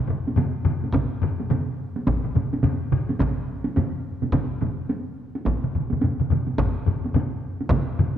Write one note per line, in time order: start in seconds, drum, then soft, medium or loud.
0.00 taiko mid medium
0.08 taiko low-mid medium
0.08 taiko mid medium
0.27 taiko high soft
0.36 taiko low-mid medium
0.36 taiko mid medium
0.36 taiko high medium
0.65 taiko low-mid medium
0.65 taiko mid medium
0.84 taiko high soft
0.93 taiko medium
0.93 taiko low-mid medium
0.93 taiko mid medium
0.93 taiko high medium
1.22 taiko low-mid medium
1.22 taiko mid medium
1.40 taiko high soft
1.50 taiko low-mid medium
1.50 taiko mid medium
1.50 taiko high medium
1.96 taiko high soft
2.07 taiko medium
2.07 taiko low-mid medium
2.07 taiko mid medium
2.07 taiko high medium
2.24 taiko low-mid medium
2.24 taiko mid medium
2.35 taiko low-mid medium
2.35 taiko mid medium
2.35 taiko high soft
2.53 taiko high medium
2.63 taiko low-mid medium
2.63 taiko mid medium
2.63 taiko high medium
2.92 taiko low-mid medium
2.92 taiko mid medium
3.09 taiko high medium
3.19 taiko medium
3.19 taiko low-mid medium
3.19 taiko mid medium
3.19 taiko high medium
3.64 taiko high medium
3.76 taiko low-mid medium
3.76 taiko mid medium
3.76 taiko high medium
4.22 taiko low-mid medium
4.22 taiko mid medium
4.22 taiko high soft
4.33 taiko medium
4.33 taiko low-mid medium
4.33 taiko mid medium
4.33 taiko high medium
4.62 taiko low-mid medium
4.62 taiko mid medium
4.62 taiko high soft
4.89 taiko high medium
5.35 taiko high soft
5.46 taiko medium
5.46 taiko low-mid medium
5.46 taiko mid medium
5.46 taiko high medium
5.64 taiko low-mid medium
5.64 taiko mid medium
5.75 taiko low-mid medium
5.75 taiko mid medium
5.90 taiko low-mid medium
5.90 taiko mid medium
5.90 taiko high soft
6.01 taiko low-mid medium
6.01 taiko mid medium
6.01 taiko high medium
6.20 taiko low-mid medium
6.20 taiko mid medium
6.30 taiko low-mid medium
6.30 taiko mid medium
6.47 taiko high soft
6.58 taiko medium
6.58 taiko low-mid medium
6.58 taiko mid medium
6.58 taiko high medium
6.86 taiko low-mid medium
6.86 taiko mid medium
6.86 taiko high soft
7.04 taiko high soft
7.14 taiko low-mid medium
7.14 taiko mid medium
7.14 taiko high medium
7.61 taiko high soft
7.70 taiko loud
7.70 taiko low-mid medium
7.70 taiko mid medium
7.70 taiko high medium
7.99 taiko low-mid medium
7.99 taiko mid medium